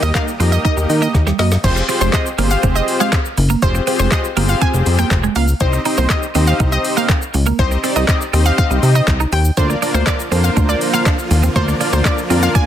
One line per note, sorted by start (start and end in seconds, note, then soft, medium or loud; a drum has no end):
0.00 0.12 D#2 medium
0.00 1.60 D#3 medium
0.00 1.60 G3 medium
0.00 0.30 A#3 medium
0.00 1.60 A#3 medium
0.00 0.13 A#3 medium
0.00 0.30 D#4 medium
0.00 0.30 G4 medium
0.00 1.60 G4 loud
0.00 0.30 A#4 medium
0.00 0.30 D#5 medium
0.00 0.12 D#5 medium
0.00 shaker medium
0.14 0.25 F5 medium
0.14 kick loud
0.14 snare medium
0.14 clap loud
0.14 closed hi-hat medium
0.14 shaker medium
0.28 shaker medium
0.40 0.58 F2 loud
0.40 1.19 A#3 medium
0.40 0.50 C4 medium
0.40 1.19 D#4 medium
0.40 1.19 G4 medium
0.40 1.19 A#4 medium
0.40 1.20 D#5 medium
0.40 open hi-hat medium
0.40 shaker medium
0.52 0.62 D#5 medium
0.52 shaker medium
0.65 0.75 D#4 medium
0.65 0.74 D#5 medium
0.65 kick loud
0.65 closed hi-hat medium
0.65 shaker medium
0.77 0.86 D#2 medium
0.77 muted clean electric guitar stroke soft
0.77 shaker medium
0.89 1.08 D#3 loud
0.89 open hi-hat medium
0.89 shaker medium
1.02 1.12 A#3 medium
1.02 1.11 D#5 medium
1.02 shaker medium
1.14 1.33 D#2 loud
1.14 muted clean electric guitar stroke soft
1.14 kick loud
1.14 snare medium
1.14 closed hi-hat medium
1.14 shaker medium
1.27 1.37 G3 medium
1.27 snare medium
1.27 shaker medium
1.39 1.58 F#2 medium
1.39 1.49 A#3 medium
1.39 1.49 D#5 medium
1.39 snare loud
1.39 open hi-hat medium
1.39 shaker soft
1.52 snare loud
1.52 shaker medium
1.64 1.82 F1 loud
1.64 1.84 C4 medium
1.64 1.84 F4 medium
1.64 1.84 G4 medium
1.64 1.84 G#4 medium
1.64 1.73 C5 medium
1.64 1.84 C5 medium
1.64 kick loud
1.64 closed hi-hat medium
1.64 crash loud
1.64 shaker medium
1.76 muted clean electric guitar stroke soft
1.76 shaker medium
1.88 2.28 C4 medium
1.88 1.99 C4 medium
1.88 2.28 F4 medium
1.88 2.28 G4 medium
1.88 2.29 G#4 medium
1.88 2.29 C5 medium
1.88 open hi-hat medium
1.88 shaker medium
2.01 2.10 F1 loud
2.01 2.11 G#3 medium
2.01 2.11 C5 medium
2.01 shaker medium
2.13 2.23 D#5 medium
2.13 kick loud
2.13 snare medium
2.13 clap loud
2.13 closed hi-hat medium
2.13 shaker medium
2.26 shaker medium
2.38 2.57 G1 loud
2.38 2.48 A#3 medium
2.38 3.18 C4 medium
2.38 3.18 F4 medium
2.38 3.18 G4 medium
2.38 3.18 G#4 medium
2.38 3.18 C5 medium
2.38 open hi-hat medium
2.38 shaker medium
2.51 2.60 F5 medium
2.51 shaker medium
2.63 2.82 F1 loud
2.63 2.73 C4 medium
2.63 kick loud
2.63 closed hi-hat medium
2.63 shaker medium
2.76 2.85 D#5 medium
2.76 muted clean electric guitar stroke soft
2.76 shaker medium
2.88 open hi-hat medium
2.88 shaker medium
3.00 3.10 G#3 medium
3.00 3.19 F5 medium
3.00 shaker medium
3.12 3.23 C4 medium
3.12 kick loud
3.12 snare medium
3.12 clap loud
3.12 closed hi-hat medium
3.12 shaker medium
3.25 shaker medium
3.37 3.56 F#1 loud
3.37 muted clean electric guitar stroke soft
3.37 open hi-hat medium
3.37 shaker soft
3.50 3.60 A#3 medium
3.50 shaker medium
3.62 3.81 F1 loud
3.62 3.82 C4 medium
3.62 3.82 F4 medium
3.62 3.82 G4 medium
3.62 3.82 G#4 medium
3.62 3.72 C5 loud
3.62 3.82 C5 medium
3.62 kick loud
3.62 closed hi-hat medium
3.62 shaker medium
3.75 muted clean electric guitar stroke soft
3.75 shaker medium
3.87 4.27 C4 medium
3.87 3.97 C4 medium
3.87 4.27 F4 medium
3.87 4.27 G4 medium
3.87 4.27 G#4 medium
3.87 4.27 C5 medium
3.87 open hi-hat medium
3.87 shaker medium
3.99 4.09 F1 loud
3.99 4.09 G#3 medium
3.99 4.09 C5 medium
3.99 shaker medium
4.11 4.21 D#5 medium
4.11 kick loud
4.11 snare medium
4.11 clap loud
4.11 closed hi-hat medium
4.11 shaker medium
4.24 shaker medium
4.36 4.55 G1 loud
4.36 4.47 A#3 medium
4.36 5.16 C4 medium
4.36 5.16 F4 medium
4.36 5.16 G4 medium
4.36 5.16 G#4 medium
4.36 5.16 C5 medium
4.36 open hi-hat medium
4.36 shaker medium
4.49 4.59 F5 medium
4.49 shaker medium
4.61 4.71 C4 medium
4.61 4.71 G#5 loud
4.61 kick loud
4.61 closed hi-hat medium
4.61 shaker medium
4.74 4.83 F1 loud
4.74 muted clean electric guitar stroke soft
4.74 shaker medium
4.86 5.05 F2 loud
4.86 open hi-hat medium
4.86 shaker medium
4.99 5.09 A#3 medium
4.99 5.08 G5 medium
4.99 shaker medium
5.11 5.29 F1 loud
5.11 muted clean electric guitar stroke soft
5.11 kick loud
5.11 snare medium
5.11 clap loud
5.11 closed hi-hat medium
5.11 shaker medium
5.24 5.33 G#3 medium
5.24 shaker medium
5.36 5.54 C#2 medium
5.36 5.46 A#3 medium
5.36 5.45 F5 medium
5.36 open hi-hat medium
5.36 shaker soft
5.48 shaker loud
5.60 5.79 C2 loud
5.60 5.80 C4 medium
5.60 5.80 D#4 medium
5.60 5.81 G4 medium
5.60 5.70 C5 medium
5.60 5.81 C5 medium
5.60 5.81 D#5 medium
5.60 kick loud
5.60 closed hi-hat medium
5.60 shaker medium
5.73 muted clean electric guitar stroke soft
5.73 shaker medium
5.85 6.25 C4 medium
5.85 6.25 D#4 medium
5.85 5.95 D#4 medium
5.85 6.25 G4 medium
5.85 6.25 C5 medium
5.85 6.25 D#5 medium
5.85 open hi-hat medium
5.85 shaker medium
5.98 6.07 C2 medium
5.98 6.08 A#3 medium
5.98 6.07 C5 medium
5.98 shaker medium
6.09 6.20 D#5 medium
6.09 kick loud
6.09 snare medium
6.09 clap loud
6.09 closed hi-hat medium
6.09 shaker medium
6.23 shaker medium
6.35 6.53 D#2 loud
6.35 7.14 C4 medium
6.35 6.45 C4 medium
6.35 7.14 D#4 medium
6.35 7.14 G4 medium
6.35 7.14 C5 medium
6.35 7.14 D#5 medium
6.35 open hi-hat medium
6.35 shaker medium
6.47 6.57 F5 medium
6.47 shaker medium
6.60 6.78 C2 medium
6.60 6.70 D#4 medium
6.60 kick loud
6.60 closed hi-hat medium
6.60 shaker medium
6.72 6.82 D#5 medium
6.72 muted clean electric guitar stroke medium
6.72 shaker medium
6.85 open hi-hat medium
6.85 shaker medium
6.97 7.07 A#3 medium
6.97 7.16 F5 medium
6.97 shaker medium
7.09 7.19 C4 medium
7.09 kick loud
7.09 snare medium
7.09 clap loud
7.09 closed hi-hat medium
7.09 shaker medium
7.22 shaker medium
7.34 7.53 C#2 medium
7.34 muted clean electric guitar stroke soft
7.34 open hi-hat medium
7.34 shaker soft
7.46 7.56 A#3 medium
7.46 shaker loud
7.59 7.77 C2 loud
7.59 7.79 C4 medium
7.59 7.79 D#4 medium
7.59 7.79 G4 medium
7.59 7.69 C5 loud
7.59 7.79 C5 medium
7.59 7.79 D#5 medium
7.59 kick loud
7.59 closed hi-hat medium
7.59 shaker medium
7.71 muted clean electric guitar stroke soft
7.71 shaker medium
7.83 8.23 C4 medium
7.83 7.94 C4 medium
7.83 8.23 D#4 medium
7.83 8.23 G4 medium
7.83 8.24 C5 medium
7.83 8.24 D5 medium
7.83 open hi-hat medium
7.83 shaker medium
7.96 8.05 C2 loud
7.96 8.06 D#4 medium
7.96 8.06 D#5 medium
7.96 shaker medium
8.08 8.18 D#5 medium
8.08 kick loud
8.08 snare medium
8.08 clap loud
8.08 closed hi-hat medium
8.08 shaker medium
8.21 shaker medium
8.33 8.52 D#2 medium
8.33 9.13 C4 medium
8.33 8.43 C4 medium
8.33 9.13 D#4 medium
8.33 9.13 G4 medium
8.33 9.13 C5 medium
8.33 9.13 D#5 medium
8.33 open hi-hat medium
8.33 shaker medium
8.46 8.55 F5 medium
8.46 shaker medium
8.58 8.68 C4 medium
8.58 8.68 F5 loud
8.58 kick loud
8.58 closed hi-hat medium
8.58 shaker medium
8.71 8.80 C2 loud
8.71 muted clean electric guitar stroke soft
8.71 shaker medium
8.83 9.01 C3 loud
8.83 open hi-hat medium
8.83 shaker medium
8.95 9.05 D#4 medium
8.95 9.05 D#5 medium
8.95 shaker medium
9.07 9.26 C2 medium
9.07 muted clean electric guitar stroke soft
9.07 kick loud
9.07 snare medium
9.07 clap loud
9.07 closed hi-hat medium
9.07 shaker medium
9.20 9.30 D#4 medium
9.20 shaker medium
9.32 9.51 D#2 loud
9.32 9.42 C4 medium
9.32 9.42 G5 medium
9.32 open hi-hat medium
9.32 shaker soft
9.45 shaker medium
9.57 9.76 D2 loud
9.57 12.66 D3 medium
9.57 12.66 F3 medium
9.57 9.77 A#3 medium
9.57 12.66 A#3 medium
9.57 9.77 D4 medium
9.57 9.77 F4 medium
9.57 12.66 F4 medium
9.57 9.77 A#4 medium
9.57 9.67 C5 medium
9.57 9.77 D5 medium
9.57 kick loud
9.57 closed hi-hat medium
9.57 shaker medium
9.70 muted clean electric guitar stroke soft
9.70 shaker medium
9.82 10.22 A#3 medium
9.82 10.22 D4 medium
9.82 9.92 D4 medium
9.82 10.22 F4 medium
9.82 10.22 A#4 medium
9.82 10.22 D5 medium
9.82 open hi-hat medium
9.82 shaker medium
9.94 10.04 D2 loud
9.94 10.04 A#3 medium
9.94 10.04 C5 medium
9.94 shaker medium
10.06 10.16 D5 medium
10.06 kick loud
10.06 snare medium
10.06 clap loud
10.06 closed hi-hat medium
10.06 shaker medium
10.20 shaker medium
10.31 10.50 F2 loud
10.31 11.11 A#3 medium
10.31 10.42 C4 medium
10.31 11.11 D4 medium
10.31 11.11 F4 medium
10.31 11.11 A#4 medium
10.31 11.11 C5 medium
10.31 open hi-hat medium
10.31 shaker medium
10.44 10.54 F5 medium
10.44 shaker medium
10.57 10.75 D2 loud
10.57 10.66 D4 medium
10.57 kick loud
10.57 closed hi-hat medium
10.57 shaker medium
10.69 10.78 D5 medium
10.69 muted clean electric guitar stroke soft
10.69 shaker medium
10.81 open hi-hat medium
10.81 shaker medium
10.94 11.04 A#3 medium
10.94 11.13 F5 medium
10.94 shaker medium
11.06 11.16 D4 medium
11.06 kick loud
11.06 snare loud
11.06 clap loud
11.06 closed hi-hat medium
11.06 shaker medium
11.19 shaker medium
11.31 11.49 D#2 loud
11.31 muted clean electric guitar stroke soft
11.31 open hi-hat medium
11.31 shaker soft
11.43 11.53 C4 medium
11.43 shaker loud
11.55 11.74 D2 loud
11.55 11.75 A#3 medium
11.55 11.75 D4 medium
11.55 11.76 F4 medium
11.55 11.76 A#4 medium
11.55 11.65 C5 loud
11.55 11.76 D5 medium
11.55 kick loud
11.55 closed hi-hat medium
11.55 shaker medium
11.68 muted clean electric guitar stroke soft
11.68 shaker medium
11.80 12.20 A#3 medium
11.80 12.20 D4 medium
11.80 11.90 D4 medium
11.80 12.20 F4 medium
11.80 12.20 A#4 medium
11.80 12.20 D5 medium
11.80 open hi-hat medium
11.80 shaker medium
11.93 12.02 D2 medium
11.93 12.03 A#3 medium
11.93 12.03 C5 medium
11.93 shaker medium
12.04 12.15 D5 medium
12.04 kick loud
12.04 snare medium
12.04 clap loud
12.04 closed hi-hat medium
12.04 shaker medium
12.18 shaker medium
12.30 12.49 F2 loud
12.30 12.66 A#3 medium
12.30 12.40 C4 medium
12.30 12.66 D4 medium
12.30 12.66 F4 medium
12.30 12.66 A#4 medium
12.30 12.66 D5 medium
12.30 open hi-hat medium
12.30 shaker medium
12.42 12.52 F5 medium
12.42 shaker medium
12.55 12.65 D4 medium
12.55 12.64 G#5 loud
12.55 kick loud
12.55 closed hi-hat medium
12.55 shaker medium